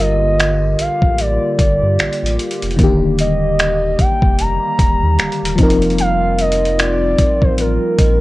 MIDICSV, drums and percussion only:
0, 0, Header, 1, 2, 480
1, 0, Start_track
1, 0, Tempo, 800000
1, 1673, Time_signature, 4, 2, 24, 8
1, 4924, End_track
2, 0, Start_track
2, 0, Title_t, "Drums"
2, 236, Note_on_c, 9, 42, 67
2, 240, Note_on_c, 9, 26, 115
2, 296, Note_off_c, 9, 42, 0
2, 300, Note_off_c, 9, 26, 0
2, 473, Note_on_c, 9, 42, 66
2, 533, Note_off_c, 9, 42, 0
2, 612, Note_on_c, 9, 36, 88
2, 672, Note_off_c, 9, 36, 0
2, 712, Note_on_c, 9, 42, 76
2, 772, Note_off_c, 9, 42, 0
2, 953, Note_on_c, 9, 36, 85
2, 954, Note_on_c, 9, 42, 70
2, 1013, Note_off_c, 9, 36, 0
2, 1014, Note_off_c, 9, 42, 0
2, 1193, Note_on_c, 9, 42, 41
2, 1198, Note_on_c, 9, 26, 105
2, 1253, Note_off_c, 9, 42, 0
2, 1258, Note_off_c, 9, 26, 0
2, 1274, Note_on_c, 9, 42, 52
2, 1334, Note_off_c, 9, 42, 0
2, 1355, Note_on_c, 9, 42, 72
2, 1415, Note_off_c, 9, 42, 0
2, 1434, Note_on_c, 9, 42, 61
2, 1494, Note_off_c, 9, 42, 0
2, 1504, Note_on_c, 9, 42, 54
2, 1564, Note_off_c, 9, 42, 0
2, 1573, Note_on_c, 9, 42, 47
2, 1624, Note_off_c, 9, 42, 0
2, 1624, Note_on_c, 9, 42, 35
2, 1673, Note_off_c, 9, 42, 0
2, 1673, Note_on_c, 9, 36, 106
2, 1673, Note_on_c, 9, 42, 72
2, 1733, Note_off_c, 9, 36, 0
2, 1733, Note_off_c, 9, 42, 0
2, 1913, Note_on_c, 9, 42, 71
2, 1973, Note_off_c, 9, 42, 0
2, 2156, Note_on_c, 9, 42, 61
2, 2159, Note_on_c, 9, 26, 127
2, 2216, Note_off_c, 9, 42, 0
2, 2219, Note_off_c, 9, 26, 0
2, 2392, Note_on_c, 9, 42, 66
2, 2393, Note_on_c, 9, 36, 93
2, 2452, Note_off_c, 9, 42, 0
2, 2453, Note_off_c, 9, 36, 0
2, 2532, Note_on_c, 9, 36, 96
2, 2592, Note_off_c, 9, 36, 0
2, 2631, Note_on_c, 9, 42, 76
2, 2691, Note_off_c, 9, 42, 0
2, 2873, Note_on_c, 9, 36, 93
2, 2873, Note_on_c, 9, 42, 74
2, 2933, Note_off_c, 9, 36, 0
2, 2933, Note_off_c, 9, 42, 0
2, 3112, Note_on_c, 9, 42, 40
2, 3118, Note_on_c, 9, 26, 102
2, 3172, Note_off_c, 9, 42, 0
2, 3178, Note_off_c, 9, 26, 0
2, 3193, Note_on_c, 9, 42, 53
2, 3253, Note_off_c, 9, 42, 0
2, 3272, Note_on_c, 9, 42, 71
2, 3332, Note_off_c, 9, 42, 0
2, 3349, Note_on_c, 9, 46, 67
2, 3352, Note_on_c, 9, 36, 108
2, 3352, Note_on_c, 9, 42, 64
2, 3409, Note_off_c, 9, 46, 0
2, 3412, Note_off_c, 9, 36, 0
2, 3412, Note_off_c, 9, 42, 0
2, 3421, Note_on_c, 9, 42, 56
2, 3481, Note_off_c, 9, 42, 0
2, 3492, Note_on_c, 9, 42, 48
2, 3541, Note_off_c, 9, 42, 0
2, 3541, Note_on_c, 9, 42, 37
2, 3591, Note_off_c, 9, 42, 0
2, 3591, Note_on_c, 9, 42, 75
2, 3651, Note_off_c, 9, 42, 0
2, 3831, Note_on_c, 9, 42, 73
2, 3891, Note_off_c, 9, 42, 0
2, 3911, Note_on_c, 9, 42, 56
2, 3971, Note_off_c, 9, 42, 0
2, 3992, Note_on_c, 9, 42, 39
2, 4052, Note_off_c, 9, 42, 0
2, 4075, Note_on_c, 9, 42, 69
2, 4078, Note_on_c, 9, 26, 123
2, 4135, Note_off_c, 9, 42, 0
2, 4138, Note_off_c, 9, 26, 0
2, 4312, Note_on_c, 9, 36, 94
2, 4312, Note_on_c, 9, 42, 73
2, 4372, Note_off_c, 9, 36, 0
2, 4372, Note_off_c, 9, 42, 0
2, 4452, Note_on_c, 9, 36, 93
2, 4512, Note_off_c, 9, 36, 0
2, 4549, Note_on_c, 9, 42, 74
2, 4609, Note_off_c, 9, 42, 0
2, 4792, Note_on_c, 9, 36, 92
2, 4792, Note_on_c, 9, 42, 72
2, 4852, Note_off_c, 9, 36, 0
2, 4852, Note_off_c, 9, 42, 0
2, 4924, End_track
0, 0, End_of_file